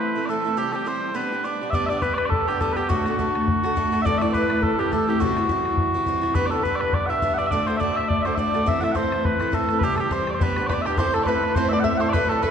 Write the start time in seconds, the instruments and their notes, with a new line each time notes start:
Already playing: steel-string acoustic guitar E3 A3 C4 E4
0.00 bagpipes B4
0.15 steel-string acoustic guitar A3 C4 E4
0.26 steel-string acoustic guitar E3, bagpipes A4 D5
0.30 steel-string acoustic guitar A3 C4 E4
0.44 steel-string acoustic guitar A3 C4 E4
0.57 steel-string acoustic guitar C3 E3 G3 C4 G4, bagpipes G4
0.72 steel-string acoustic guitar G3 C4 G4, bagpipes G4 A4
0.85 steel-string acoustic guitar E3 G3 C4 G4, bagpipes C5
1.14 steel-string acoustic guitar G3 B3 D4 G4, bagpipes B4
1.32 steel-string acoustic guitar B3 D4 G4
1.44 steel-string acoustic guitar G3 B3 D4 G4, bagpipes D5
1.61 steel-string acoustic guitar B3 D4 G4
1.70 steel-string acoustic guitar G3, flute D5, bagpipes E5, bodhran
1.74 steel-string acoustic guitar B3 D4 G4, bagpipes D5
1.86 steel-string acoustic guitar G4, flute D5, bagpipes D5 E5, bodhran
1.91 steel-string acoustic guitar B3 D4
2.00 steel-string acoustic guitar G3 B3 D4, flute B4, bagpipes B4, bodhran
2.04 steel-string acoustic guitar G4
2.14 flute B4, bagpipes B4 D5, bodhran
2.26 bagpipes A4 D5
2.31 flute A4, bodhran
2.40 bodhran
2.47 steel-string acoustic guitar B3 D4 G4, flute G4, bagpipes G4, bodhran
2.60 steel-string acoustic guitar G3 B3 D4 G4, bagpipes A4, flute A4, bodhran
2.73 steel-string acoustic guitar G4, bagpipes G4 B4, bodhran
2.77 steel-string acoustic guitar B3 D4, flute G4
2.88 steel-string acoustic guitar D2 A2 D3 A3 D4 F#4, flute F#4, bagpipes F#4, bodhran
3.06 steel-string acoustic guitar D3 A3 D4 F#4, bodhran
3.19 steel-string acoustic guitar D3 A3 D4 F#4, bodhran
3.35 bodhran
3.48 bodhran
3.56 bodhran
3.63 steel-string acoustic guitar D3 A3 D4 F#4, bodhran
3.76 steel-string acoustic guitar D3 A3 D4 F#4, bodhran
3.92 steel-string acoustic guitar D3 A3 D4 F#4, bodhran
4.02 steel-string acoustic guitar C3, flute D5, bagpipes D5 E5
4.06 steel-string acoustic guitar E3 A3 C4 E4, bodhran
4.18 steel-string acoustic guitar E4, flute D5, bagpipes D5 E5, bodhran
4.23 steel-string acoustic guitar A3 C4
4.31 steel-string acoustic guitar E3, flute B4, bagpipes B4, bodhran
4.35 steel-string acoustic guitar A3 C4 E4
4.50 bodhran
4.62 flute A4, bagpipes A4, bodhran
4.72 bodhran
4.77 steel-string acoustic guitar A3 C4 E4, flute G4, bagpipes G4, bodhran
4.91 steel-string acoustic guitar E3 A3 C4 E4, flute A4, bagpipes A4, bodhran
5.07 steel-string acoustic guitar A3 C4 E4, flute G4, bagpipes G4
5.20 steel-string acoustic guitar C3 E3 G3 C4 E4, flute F#4, bagpipes F#4, bodhran
5.36 steel-string acoustic guitar G3 C4 E4, bodhran
5.49 steel-string acoustic guitar E3 G3 C4 E4, bodhran
5.65 bodhran
5.77 bodhran
5.87 bodhran
5.94 steel-string acoustic guitar G3 C4 E4
6.06 steel-string acoustic guitar E3 G3 C4 E4, bodhran
6.21 steel-string acoustic guitar G3 C4 E4, bodhran
6.35 steel-string acoustic guitar G3 B3 D4 G4, flute B4, bagpipes B4, bodhran
6.46 bagpipes D5
6.51 steel-string acoustic guitar B3 D4 G4, bagpipes A4, flute A4, bodhran
6.63 steel-string acoustic guitar G3 B3 D4, flute B4, bagpipes B4, bodhran
6.67 steel-string acoustic guitar G4
6.76 bagpipes D5
6.80 bagpipes B4, flute B4, bodhran
6.93 flute D5, bagpipes D5, bodhran
7.02 bodhran
7.06 steel-string acoustic guitar G4, flute E5, bagpipes E5 F#5, bodhran
7.11 steel-string acoustic guitar B3 D4
7.22 steel-string acoustic guitar G3 B3 D4 G4, bodhran
7.34 bagpipes F#5
7.38 steel-string acoustic guitar B3 D4 G4, bagpipes D5, bodhran
7.47 flute D5, bagpipes E5
7.51 steel-string acoustic guitar D2 A2 D3 A3 D4 F#4, bagpipes D5, bodhran
7.67 steel-string acoustic guitar D3 A3 D4 F#4, bagpipes C5, flute C5, bodhran
7.77 steel-string acoustic guitar D3 A3, bagpipes D5 E5
7.81 steel-string acoustic guitar D4 F#4, flute D5, bodhran
7.96 bagpipes E5, flute E5, bodhran
8.08 bagpipes D5, flute D5, bodhran
8.18 bodhran
8.22 steel-string acoustic guitar F#4, bagpipes C5 E5, bodhran
8.26 steel-string acoustic guitar D3 A3 D4, flute C5
8.35 steel-string acoustic guitar D3, bagpipes D5 E5, bodhran
8.39 steel-string acoustic guitar A3 D4 F#4, flute D5
8.54 steel-string acoustic guitar D3 A3 D4 F#4, bodhran
8.66 steel-string acoustic guitar C3 E3 A3 C4 E4, flute E5, bagpipes E5, bodhran
8.81 steel-string acoustic guitar A3 C4 E4, flute E5, bagpipes E5 F#5, bodhran
8.92 steel-string acoustic guitar E3 A3 C4, bagpipes C5 F#5, flute C5, bodhran
8.97 steel-string acoustic guitar E4
9.12 bodhran
9.24 flute B4, bagpipes B4, bodhran
9.33 bodhran
9.39 steel-string acoustic guitar A3 C4 E4, bodhran
9.52 steel-string acoustic guitar E3 A3 C4 E4, flute A4, bagpipes A4, bodhran
9.69 steel-string acoustic guitar A3 C4 E4, bodhran
9.79 steel-string acoustic guitar C3, flute G4, bagpipes B4, bodhran
9.84 steel-string acoustic guitar E3 G3 C4 G4, bagpipes G4
9.96 flute G4, steel-string acoustic guitar G4, bagpipes A4, bodhran
10.00 steel-string acoustic guitar G3 C4, bagpipes G4
10.11 steel-string acoustic guitar E3 G3 C4 G4, flute C5, bagpipes C5, bodhran
10.27 bagpipes D5, bodhran
10.33 flute C5, bagpipes C5
10.39 steel-string acoustic guitar G3 B3 D4 G4, flute B4, bagpipes B4, bodhran
10.48 bodhran
10.56 steel-string acoustic guitar B3 D4 G4, bodhran
10.67 steel-string acoustic guitar G3, five-string banjo B4, bagpipes B4 D5, flute D5, bodhran
10.71 steel-string acoustic guitar B3 D4 G4, bagpipes D5
10.81 bagpipes E5, bodhran
10.86 steel-string acoustic guitar B3 D4 G4, flute G4, bagpipes G4, five-string banjo G4
10.97 steel-string acoustic guitar A2 A3 C4 E4 A4, flute C5, bagpipes C5, five-string banjo C5, bodhran
11.14 flute A4, bagpipes A4, five-string banjo A4, bodhran
11.23 steel-string acoustic guitar A3, flute B4, bagpipes B4 D5, bodhran
11.28 steel-string acoustic guitar C4 E4 A4, five-string banjo B4
11.44 bodhran
11.55 steel-string acoustic guitar A2 A3 C4 E4 A4, flute C5, bagpipes C5, five-string banjo C5, bodhran
11.64 bodhran
11.69 flute D5, bagpipes D5 E5
11.73 five-string banjo D5
11.80 bagpipes F#5
11.84 steel-string acoustic guitar A3 C4 E4 A4, flute E5, bagpipes E5, five-string banjo E5, bodhran
11.97 steel-string acoustic guitar A4, five-string banjo C5, bagpipes C5 F#5
12.01 steel-string acoustic guitar C4 E4
12.09 bagpipes B4 D5
12.13 steel-string acoustic guitar D2 A2 F#3 A3 D4 A4, five-string banjo B4, flute B4, bodhran
12.29 bagpipes A4, flute A4, five-string banjo A4, bodhran
12.42 steel-string acoustic guitar F#3 A3 D4 A4, bagpipes B4, five-string banjo B4, flute B4, bodhran